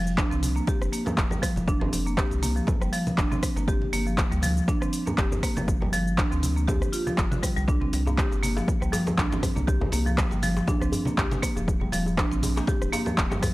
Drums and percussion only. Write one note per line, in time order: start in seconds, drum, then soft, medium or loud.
0.07 shaker soft
0.18 kick loud
0.18 cross-stick loud
0.18 clap loud
0.18 shaker medium
0.31 muted conga soft
0.31 shaker soft
0.43 open hi-hat medium
0.43 high conga medium
0.43 shaker loud
0.57 shaker soft
0.67 kick loud
0.67 muted conga medium
0.67 shaker medium
0.82 cross-stick medium
0.82 shaker soft
0.93 open hi-hat medium
0.93 shaker medium
1.06 muted conga soft
1.06 low conga medium
1.06 shaker soft
1.18 kick loud
1.18 clap loud
1.18 shaker medium
1.31 low conga medium
1.31 shaker soft
1.43 kick medium
1.43 cross-stick medium
1.43 open hi-hat medium
1.43 shaker medium
1.56 muted conga medium
1.56 high conga medium
1.56 shaker soft
1.68 kick loud
1.68 shaker medium
1.81 high conga medium
1.81 low conga loud
1.93 open hi-hat loud
1.93 muted conga medium
1.93 shaker loud
2.07 shaker soft
2.18 kick loud
2.18 cross-stick loud
2.18 clap loud
2.18 shaker medium
2.31 muted conga soft
2.31 shaker soft
2.42 open hi-hat loud
2.42 high conga medium
2.42 shaker loud
2.57 shaker soft
2.67 kick loud
2.67 muted conga medium
2.67 low conga loud
2.67 shaker medium
2.82 cross-stick medium
2.82 shaker soft
2.93 open hi-hat medium
2.93 shaker medium
3.07 muted conga soft
3.07 high conga medium
3.07 shaker soft
3.18 kick loud
3.18 clap loud
3.18 shaker medium
3.32 high conga loud
3.32 shaker soft
3.43 kick medium
3.43 cross-stick loud
3.43 open hi-hat medium
3.43 shaker medium
3.57 muted conga medium
3.57 shaker soft
3.68 kick loud
3.68 shaker medium
3.82 high conga medium
3.93 open hi-hat medium
3.93 muted conga soft
3.93 shaker loud
4.07 shaker soft
4.18 kick loud
4.18 cross-stick loud
4.18 clap loud
4.18 shaker medium
4.32 muted conga soft
4.32 shaker soft
4.42 open hi-hat medium
4.42 high conga medium
4.42 shaker loud
4.57 shaker soft
4.68 kick loud
4.68 muted conga medium
4.68 shaker medium
4.82 cross-stick medium
4.82 shaker soft
4.93 open hi-hat medium
4.93 shaker loud
5.07 muted conga soft
5.07 low conga medium
5.07 shaker soft
5.18 kick loud
5.18 clap loud
5.18 shaker medium
5.32 low conga medium
5.32 shaker soft
5.43 kick medium
5.43 cross-stick medium
5.43 open hi-hat medium
5.43 shaker loud
5.57 muted conga medium
5.57 high conga loud
5.57 shaker soft
5.68 kick loud
5.68 shaker medium
5.82 high conga medium
5.82 low conga medium
5.93 open hi-hat medium
5.93 muted conga soft
5.93 shaker loud
6.07 shaker soft
6.18 kick loud
6.18 cross-stick loud
6.18 clap loud
6.18 shaker medium
6.32 muted conga soft
6.32 shaker soft
6.43 open hi-hat medium
6.43 high conga medium
6.43 shaker medium
6.57 shaker soft
6.68 kick loud
6.68 muted conga soft
6.68 low conga loud
6.68 shaker medium
6.82 cross-stick medium
6.82 shaker soft
6.93 open hi-hat medium
6.93 shaker medium
7.07 muted conga soft
7.07 high conga medium
7.07 shaker soft
7.18 kick loud
7.18 clap loud
7.18 shaker medium
7.32 high conga loud
7.32 shaker soft
7.43 kick medium
7.43 cross-stick medium
7.43 open hi-hat medium
7.43 shaker medium
7.57 muted conga medium
7.57 shaker soft
7.68 kick loud
7.68 djembe tone medium
7.68 shaker medium
7.82 high conga medium
7.93 open hi-hat medium
7.93 muted conga medium
7.93 shaker medium
8.07 djembe tone loud
8.07 shaker soft
8.18 kick loud
8.18 cross-stick medium
8.18 clap loud
8.18 shaker medium
8.32 muted conga soft
8.32 djembe tone medium
8.32 shaker soft
8.43 open hi-hat medium
8.43 high conga medium
8.43 shaker loud
8.57 djembe slap medium
8.57 djembe tone medium
8.57 shaker soft
8.68 kick loud
8.68 muted conga medium
8.68 shaker medium
8.82 cross-stick medium
8.82 shaker soft
8.93 open hi-hat medium
8.93 djembe slap medium
8.93 djembe tone loud
8.93 shaker medium
9.07 muted conga soft
9.07 low conga medium
9.07 shaker soft
9.18 kick loud
9.18 clap loud
9.18 djembe tone medium
9.18 shaker medium
9.32 djembe slap medium
9.32 low conga medium
9.32 shaker soft
9.43 kick medium
9.43 cross-stick medium
9.43 open hi-hat medium
9.43 djembe tone medium
9.43 djembe bass medium
9.43 shaker medium
9.56 muted conga soft
9.56 high conga medium
9.56 shaker soft
9.68 kick loud
9.68 shaker medium
9.81 djembe tone medium
9.81 high conga medium
9.81 low conga medium
9.92 open hi-hat loud
9.92 muted conga medium
9.92 shaker loud
10.07 djembe tone medium
10.07 shaker soft
10.18 kick loud
10.18 cross-stick medium
10.18 clap loud
10.18 shaker medium
10.31 muted conga soft
10.31 djembe tone medium
10.31 shaker soft
10.42 open hi-hat medium
10.42 high conga medium
10.42 shaker medium
10.57 djembe slap medium
10.57 shaker soft
10.67 kick loud
10.67 muted conga soft
10.67 djembe tone medium
10.67 low conga medium
10.67 shaker medium
10.82 cross-stick medium
10.82 shaker soft
10.92 open hi-hat medium
10.92 djembe tone medium
10.92 djembe bass medium
10.92 shaker medium
11.05 muted conga soft
11.05 high conga medium
11.05 shaker soft
11.18 kick loud
11.18 clap loud
11.18 djembe tone medium
11.18 shaker medium
11.31 djembe slap medium
11.31 high conga loud
11.31 shaker soft
11.43 kick medium
11.43 cross-stick medium
11.43 open hi-hat medium
11.43 shaker medium
11.57 muted conga soft
11.57 djembe tone medium
11.57 shaker soft
11.68 kick loud
11.68 shaker medium
11.81 high conga medium
11.81 djembe tone medium
11.92 open hi-hat loud
11.92 muted conga medium
11.92 shaker medium
12.06 djembe tone medium
12.06 shaker soft
12.18 kick loud
12.18 cross-stick medium
12.18 clap loud
12.18 shaker soft
12.32 muted conga soft
12.32 shaker soft
12.43 open hi-hat medium
12.43 high conga medium
12.43 djembe tone medium
12.43 shaker medium
12.57 djembe slap medium
12.57 shaker soft
12.67 kick loud
12.67 muted conga medium
12.67 djembe tone medium
12.67 shaker medium
12.82 cross-stick medium
12.82 shaker soft
12.93 open hi-hat medium
12.93 djembe slap medium
12.93 djembe tone medium
12.93 shaker medium
13.06 muted conga soft
13.06 low conga medium
13.06 shaker soft
13.18 kick loud
13.18 clap loud
13.18 shaker medium
13.31 djembe slap medium
13.31 djembe tone medium
13.31 low conga medium
13.31 shaker soft
13.43 kick medium
13.43 cross-stick medium
13.43 open hi-hat medium
13.43 djembe bass medium
13.43 shaker medium